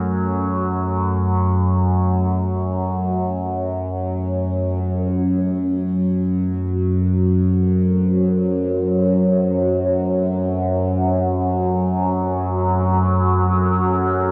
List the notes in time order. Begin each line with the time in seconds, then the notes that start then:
Already playing: F#2 F#3 A3 A4
4.83 F#2 F#3 F#4
5.68 A4
6.54 C5
13.63 B4